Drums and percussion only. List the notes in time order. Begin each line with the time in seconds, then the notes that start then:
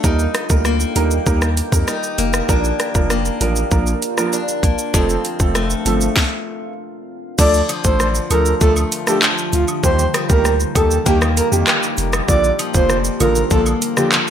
0.04 kick, shaker
0.19 shaker
0.35 cross-stick, closed hi-hat, shaker
0.50 kick, shaker
0.65 cross-stick, shaker
0.80 shaker
0.96 closed hi-hat, shaker
1.11 shaker
1.26 kick, shaker
1.42 cross-stick, shaker
1.57 closed hi-hat, shaker
1.72 kick, shaker
1.88 cross-stick, shaker
2.03 shaker
2.18 closed hi-hat, shaker
2.33 cross-stick, shaker
2.49 kick, shaker
2.64 shaker
2.80 cross-stick, closed hi-hat, shaker
2.95 kick, shaker
3.10 cross-stick, shaker
3.25 shaker
3.41 closed hi-hat, shaker
3.56 shaker
3.71 kick, shaker
3.87 shaker
4.02 closed hi-hat, shaker
4.18 cross-stick, shaker
4.33 shaker
4.48 shaker
4.63 kick, closed hi-hat, shaker
4.79 shaker
4.94 kick, shaker
5.09 shaker
5.25 closed hi-hat, shaker
5.40 kick, shaker
5.55 cross-stick, shaker
5.70 shaker
5.86 closed hi-hat, shaker
6.01 shaker
6.16 kick, snare
7.39 kick, crash, shaker
7.54 shaker
7.69 closed hi-hat, cabasa, high woodblock, shaker
7.84 kick, shaker
8.00 cross-stick, shaker
8.15 shaker
8.31 closed hi-hat, cabasa, high woodblock, shaker
8.46 shaker
8.61 kick, shaker
8.76 high woodblock, shaker
8.92 closed hi-hat, cabasa, shaker
9.07 cross-stick, shaker
9.22 clap, high woodblock, shaker
9.38 shaker
9.52 closed hi-hat, cabasa, shaker
9.68 high woodblock, shaker
9.84 kick, shaker
9.99 shaker
10.14 cross-stick, closed hi-hat, cabasa, high woodblock, shaker
10.30 kick, shaker
10.45 cross-stick, shaker
10.60 shaker
10.75 kick, closed hi-hat, cabasa, high woodblock, shaker
10.91 shaker
11.06 kick, shaker
11.22 cross-stick, high woodblock, shaker
11.37 closed hi-hat, cabasa, shaker
11.53 shaker
11.67 cross-stick, clap, high woodblock, shaker
11.83 shaker
11.97 closed hi-hat, cabasa, shaker
12.13 cross-stick, high woodblock, shaker
12.29 kick, shaker
12.44 shaker
12.59 closed hi-hat, cabasa, high woodblock, shaker
12.74 kick, shaker
12.90 cross-stick, shaker
13.05 shaker
13.20 closed hi-hat, cabasa, high woodblock, shaker
13.35 shaker
13.51 kick, shaker
13.66 high woodblock, shaker
13.82 closed hi-hat, cabasa, shaker
13.97 cross-stick, shaker
14.12 clap, high woodblock, shaker